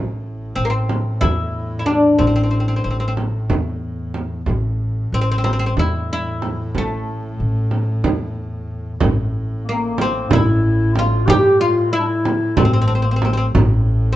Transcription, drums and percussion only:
0.89 frame drum
1.21 frame drum
1.86 frame drum
2.19 frame drum
3.17 frame drum
3.50 frame drum
4.14 frame drum
4.46 frame drum
5.45 frame drum
5.77 frame drum
6.42 frame drum
6.75 frame drum
7.71 frame drum
8.04 frame drum
9.00 frame drum, darbuka dum
9.34 darbuka ka
9.98 darbuka tek, frame drum
10.31 frame drum, darbuka dum
10.95 darbuka tek, frame drum
11.27 darbuka dum, frame drum
11.61 darbuka ka
12.25 darbuka tek, frame drum
12.57 frame drum, darbuka dum
13.22 darbuka tek, frame drum
13.55 darbuka dum, frame drum
13.88 darbuka ka

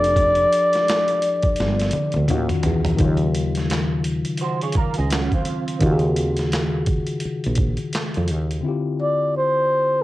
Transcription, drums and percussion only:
0.04 closed hi-hat
0.16 kick, closed hi-hat
0.35 closed hi-hat
0.53 closed hi-hat
0.73 snare, closed hi-hat
0.88 snare, clap, closed hi-hat
1.08 closed hi-hat
1.22 closed hi-hat
1.42 kick, closed hi-hat
1.56 closed hi-hat
1.60 snare
1.80 snare, closed hi-hat
1.91 closed hi-hat, high tom
2.12 closed hi-hat, high tom
2.28 closed hi-hat, mid tom
2.49 closed hi-hat, mid tom
2.63 closed hi-hat, floor tom
2.85 closed hi-hat, floor tom
2.98 kick, closed hi-hat
3.17 closed hi-hat
3.35 closed hi-hat
3.55 snare, closed hi-hat
3.70 snare, clap, closed hi-hat
4.04 closed hi-hat
4.25 closed hi-hat
4.37 closed hi-hat
4.61 closed hi-hat
4.72 kick, closed hi-hat
4.94 closed hi-hat
5.10 snare, clap, closed hi-hat
5.32 kick, closed hi-hat
5.45 closed hi-hat
5.68 closed hi-hat
5.80 kick, closed hi-hat
5.99 closed hi-hat
6.16 closed hi-hat
6.37 snare, closed hi-hat
6.52 snare, clap, closed hi-hat
6.86 kick, closed hi-hat
7.07 closed hi-hat
7.20 closed hi-hat
7.44 closed hi-hat
7.55 kick, closed hi-hat
7.77 closed hi-hat
7.93 snare, clap, closed hi-hat
8.14 closed hi-hat
8.28 closed hi-hat
8.51 closed hi-hat

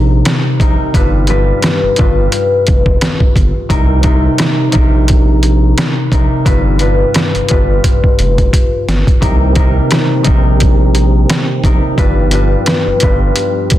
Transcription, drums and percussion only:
0.25 cross-stick, snare, closed hi-hat
0.60 kick, closed hi-hat
0.94 kick, closed hi-hat
1.27 closed hi-hat
1.62 cross-stick, snare, closed hi-hat
1.96 kick, closed hi-hat
2.32 closed hi-hat
2.67 kick, closed hi-hat
2.86 kick
3.01 cross-stick, snare, closed hi-hat
3.20 kick
3.36 kick, closed hi-hat
3.70 kick, closed hi-hat
4.03 kick, closed hi-hat
4.38 cross-stick, snare, closed hi-hat
4.72 kick, closed hi-hat
5.08 kick, closed hi-hat
5.43 closed hi-hat
5.78 cross-stick, snare, closed hi-hat
6.12 kick, closed hi-hat
6.46 kick, closed hi-hat
6.79 closed hi-hat
7.14 cross-stick, snare, closed hi-hat
7.35 closed hi-hat
7.49 kick, closed hi-hat
7.84 kick, closed hi-hat
8.04 kick
8.19 closed hi-hat
8.38 kick, closed hi-hat
8.53 kick, closed hi-hat
8.89 snare, closed hi-hat
9.07 kick, closed hi-hat
9.22 kick, closed hi-hat
9.55 kick, closed hi-hat
9.91 cross-stick, snare, closed hi-hat
10.24 kick, closed hi-hat
10.60 kick, closed hi-hat
10.95 closed hi-hat
11.30 cross-stick, snare, closed hi-hat
11.64 kick, closed hi-hat
11.98 kick, closed hi-hat
12.31 closed hi-hat
12.66 cross-stick, snare, closed hi-hat
13.00 kick, closed hi-hat
13.36 closed hi-hat
13.70 kick, closed hi-hat

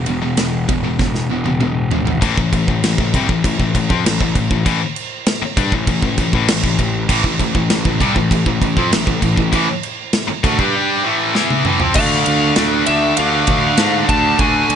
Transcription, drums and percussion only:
0.06 ride
0.37 snare, ride
0.69 kick, ride
0.99 kick, snare
1.15 snare
1.46 high tom
1.61 mid tom
1.91 floor tom
2.07 floor tom
2.22 kick, crash
2.38 kick
2.53 kick, crash
2.68 kick
2.84 snare, crash
2.98 kick
3.14 kick, crash
3.29 kick
3.44 kick, crash
3.60 kick
3.75 kick, crash
3.90 kick
4.06 snare, crash
4.21 kick
4.35 kick, crash
4.51 kick
4.66 kick, crash
4.96 crash
5.26 snare, crash
5.57 kick, crash
5.72 kick
5.87 kick, crash
6.02 kick
6.18 kick, crash
6.33 kick
6.48 snare, crash
6.64 kick
6.79 kick, crash
7.09 kick, crash
7.24 kick
7.40 kick, crash
7.55 kick
7.70 snare, crash
7.85 kick
8.01 kick, crash
8.16 kick
8.31 kick, crash
8.46 kick
8.62 kick, crash
8.77 kick
8.92 snare, crash
9.07 kick
9.22 kick, crash
9.37 kick
9.53 kick, crash
9.83 crash
10.13 snare, crash
10.44 kick, crash
10.59 kick
11.35 snare
11.50 high tom
11.65 mid tom
11.80 floor tom
11.94 kick, crash
12.26 ride
12.56 snare, ride
12.86 ride
13.17 ride
13.47 kick, ride
13.77 snare, ride
14.09 kick, ride
14.39 kick, ride
14.70 ride

